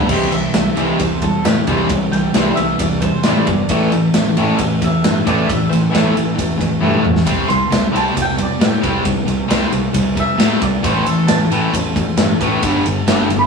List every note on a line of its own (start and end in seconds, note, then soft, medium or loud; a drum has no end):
0.09 0.23 C2 medium
0.09 0.31 C3 medium
0.09 0.30 E3 medium
0.09 0.32 G3 medium
0.09 0.32 C4 medium
0.09 kick loud
0.09 crash loud
0.31 0.46 C2 medium
0.31 0.53 C3 medium
0.31 0.52 E3 medium
0.31 0.53 G3 medium
0.31 0.98 E5 loud
0.31 snare soft
0.31 ride medium
0.54 0.69 C2 medium
0.54 0.76 C3 medium
0.54 0.75 E3 medium
0.54 0.76 G3 medium
0.54 snare loud
0.54 ride medium
0.77 0.91 C2 medium
0.77 0.99 C3 medium
0.77 0.98 E3 medium
0.77 0.99 G3 medium
0.77 1.00 C4 medium
0.77 ride medium
0.98 1.28 C2 medium
0.98 1.21 C3 medium
0.98 1.20 E3 medium
0.98 1.21 G3 medium
0.98 1.20 C5 medium
0.98 kick medium
0.98 ride medium
1.22 1.44 C3 medium
1.22 1.43 E3 medium
1.22 1.44 G3 medium
1.22 1.44 A4 medium
1.22 kick medium
1.22 ride medium
1.45 1.59 A2 medium
1.45 1.67 C3 medium
1.45 1.66 E3 medium
1.45 1.67 G3 medium
1.45 1.66 G4 medium
1.45 snare loud
1.45 ride medium
1.67 1.81 C2 medium
1.67 1.90 C3 medium
1.67 1.89 E3 medium
1.67 1.90 G3 medium
1.67 1.90 C4 medium
1.67 kick medium
1.67 ride medium
1.89 2.04 C2 medium
1.89 2.10 C3 medium
1.89 2.11 E3 medium
1.89 2.11 G3 medium
1.89 kick loud
1.89 ride medium
2.12 2.27 C2 medium
2.12 2.33 C3 medium
2.12 2.34 E3 medium
2.12 2.33 G3 medium
2.12 2.54 G5 loud
2.12 snare soft
2.12 ride medium
2.34 2.49 C2 medium
2.34 2.56 C3 medium
2.34 2.57 E3 medium
2.34 2.56 G3 loud
2.34 2.57 C4 medium
2.34 snare loud
2.34 ride medium
2.55 2.72 C2 medium
2.55 2.78 C3 medium
2.55 2.79 E3 medium
2.55 2.79 G3 medium
2.55 2.80 E5 medium
2.55 ride medium
2.79 3.08 C2 medium
2.79 3.01 C3 medium
2.79 3.01 E3 medium
2.79 3.01 G3 medium
2.79 3.00 D5 medium
2.79 kick medium
2.79 ride medium
3.01 3.23 C3 medium
3.01 3.24 E3 medium
3.01 3.23 G3 medium
3.01 3.24 C5 medium
3.01 kick medium
3.01 ride medium
3.23 3.39 A2 medium
3.23 3.47 C3 medium
3.23 3.47 E3 medium
3.23 3.47 G3 loud
3.23 3.47 C4 medium
3.23 3.89 D5 medium
3.23 snare loud
3.23 ride medium
3.47 3.61 G1 medium
3.47 3.68 C3 medium
3.47 3.69 E3 medium
3.47 3.69 G3 medium
3.47 kick medium
3.47 ride medium
3.69 3.84 A1 medium
3.69 3.91 A2 medium
3.69 3.92 E3 medium
3.69 3.92 A3 loud
3.69 kick loud
3.69 ride loud
3.92 4.07 A1 medium
3.92 4.13 A2 medium
3.92 4.13 E3 medium
3.92 ride medium
4.14 4.29 A1 medium
4.14 4.35 A2 medium
4.14 4.35 E3 medium
4.14 snare loud
4.14 ride medium
4.37 4.51 A1 medium
4.37 4.58 A2 medium
4.37 4.59 E3 medium
4.37 4.59 A3 medium
4.37 ride medium
4.59 4.87 A1 medium
4.59 4.80 A2 medium
4.59 4.80 E3 medium
4.59 kick medium
4.59 ride medium
4.82 5.02 A2 medium
4.82 5.02 E3 medium
4.82 5.26 E5 loud
4.82 kick medium
4.82 ride medium
5.04 5.19 G2 medium
5.04 5.25 A2 medium
5.04 5.25 E3 medium
5.04 snare loud
5.04 ride medium
5.26 5.41 A1 medium
5.26 5.47 A2 medium
5.26 5.47 E3 medium
5.26 5.48 A3 medium
5.26 5.47 D5 medium
5.26 kick medium
5.26 ride medium
5.46 5.63 A1 medium
5.46 5.68 A2 medium
5.46 5.69 E3 medium
5.46 5.68 E5 medium
5.46 kick loud
5.50 ride medium
5.69 5.86 A1 medium
5.69 5.90 A2 medium
5.69 5.91 E3 medium
5.69 5.76 C5 medium
5.69 snare soft
5.69 ride medium
5.90 6.11 A2 medium
5.90 6.11 E3 medium
5.90 6.14 A3 loud
5.90 6.55 E5 medium
5.95 6.09 A1 medium
5.95 snare loud
5.95 ride medium
6.12 6.34 A2 medium
6.12 6.35 E3 medium
6.16 6.30 A1 medium
6.16 ride medium
6.35 6.66 A1 medium
6.35 6.56 A2 medium
6.35 6.57 E3 medium
6.35 kick medium
6.35 ride medium
6.58 6.79 A2 medium
6.58 6.79 E3 medium
6.58 kick medium
6.58 ride medium
6.62 6.82 E3 medium
6.81 6.96 G2 medium
6.81 7.01 A2 medium
6.81 7.02 E3 medium
6.81 7.04 A3 medium
6.81 high tom medium
6.94 mid tom medium
7.02 7.18 A1 medium
7.02 7.24 A2 medium
7.02 7.24 E3 medium
7.02 mid tom medium
7.16 snare medium
7.25 7.42 C2 medium
7.25 7.47 C3 medium
7.25 7.48 G3 medium
7.25 7.48 C4 loud
7.25 kick loud
7.25 ride loud
7.48 7.63 C2 medium
7.48 7.69 C3 medium
7.48 7.70 G3 medium
7.48 7.95 C6 loud
7.48 snare soft
7.48 ride medium
7.70 7.85 C2 medium
7.70 7.91 C3 medium
7.70 7.91 G3 medium
7.70 snare loud
7.70 ride medium
7.92 8.08 C2 medium
7.92 8.14 C3 medium
7.92 8.14 G3 medium
7.92 8.15 C4 medium
7.92 ride medium
7.96 8.18 A5 medium
8.15 8.44 C2 medium
8.15 8.36 C3 medium
8.15 8.36 G3 medium
8.15 kick medium
8.15 ride medium
8.22 8.42 G5 medium
8.38 8.58 C3 medium
8.38 8.59 G3 medium
8.38 kick medium
8.38 ride medium
8.42 8.64 D5 medium
8.60 8.74 A2 medium
8.60 8.80 C3 medium
8.60 8.80 G3 medium
8.60 snare loud
8.60 ride medium
8.65 9.26 G5 medium
8.81 8.97 C2 medium
8.81 9.03 C3 medium
8.81 9.03 G3 medium
8.81 9.04 C4 loud
8.81 kick medium
8.81 ride medium
9.04 9.19 C2 medium
9.04 9.24 C3 medium
9.04 9.25 G3 medium
9.04 kick loud
9.04 ride medium
9.26 9.41 C2 medium
9.26 9.47 C3 medium
9.26 9.47 G3 medium
9.26 ride medium
9.48 9.63 C2 medium
9.48 9.70 C3 medium
9.48 9.70 G3 loud
9.48 9.71 C4 loud
9.48 snare loud
9.48 ride medium
9.71 9.86 C2 medium
9.71 9.92 C3 medium
9.71 9.92 G3 medium
9.71 ride medium
9.93 10.22 C2 medium
9.93 10.14 C3 medium
9.93 10.15 G3 medium
9.93 kick medium
9.93 ride medium
10.16 10.37 C3 medium
10.16 10.37 G3 medium
10.16 10.64 E5 medium
10.16 kick medium
10.16 ride medium
10.38 10.52 A2 medium
10.38 10.60 C3 medium
10.38 10.61 G3 loud
10.38 10.62 C4 medium
10.38 snare loud
10.38 ride loud
10.62 10.76 C2 medium
10.62 10.82 C3 medium
10.62 10.82 G3 medium
10.62 10.83 D5 medium
10.62 kick medium
10.62 ride medium
10.83 10.98 A1 medium
10.83 11.04 A2 medium
10.83 11.05 E3 medium
10.83 11.05 A3 loud
10.83 11.06 C5 medium
10.83 kick loud
10.83 ride loud
11.05 11.19 A1 medium
11.05 11.26 A2 medium
11.05 11.26 E3 medium
11.05 11.27 A4 medium
11.05 snare soft
11.05 ride medium
11.27 11.42 A1 loud
11.27 11.49 A2 medium
11.27 11.49 E3 medium
11.27 11.91 A5 loud
11.27 snare loud
11.27 ride loud
11.50 11.64 A1 medium
11.50 11.72 A2 medium
11.50 11.72 E3 medium
11.50 11.73 A3 medium
11.50 ride medium
11.74 12.01 A1 medium
11.74 11.94 A2 medium
11.74 11.94 E3 medium
11.74 kick medium
11.74 ride loud
11.96 12.16 A2 medium
11.96 12.16 E3 medium
11.96 kick medium
11.96 ride medium
12.17 12.31 G2 medium
12.17 12.38 A2 medium
12.17 12.38 E3 medium
12.17 snare loud
12.17 ride loud
12.41 12.55 A1 loud
12.41 12.62 A2 medium
12.41 12.62 E3 loud
12.41 12.63 A3 loud
12.41 kick medium
12.41 ride medium
12.62 12.76 G1 medium
12.62 12.84 G2 medium
12.62 12.84 D3 medium
12.62 12.85 G3 loud
12.62 kick loud
12.62 ride medium
12.85 12.99 G1 medium
12.85 13.06 G2 medium
12.85 13.06 D3 medium
12.85 ride medium
13.07 13.21 G1 loud
13.07 13.29 G2 loud
13.07 13.30 D3 medium
13.07 13.30 G3 loud
13.07 snare loud
13.07 ride medium
13.12 13.39 D6 loud
13.29 13.43 G1 medium
13.29 13.47 G2 medium
13.29 13.47 D3 medium
13.29 ride medium
13.39 13.47 B5 medium